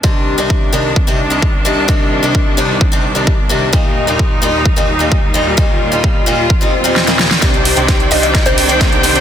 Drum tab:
HH |----------------|----------------|----------------|----------------|
SD |----------------|----------------|----------------|------------oooo|
BD |o---o---o---o---|o---o---o---o---|o---o---o---o---|o---o---o-------|

HH |xxoxxxoxxxoxxxox|
SD |o---o---o---o---|
BD |o---o---o---o---|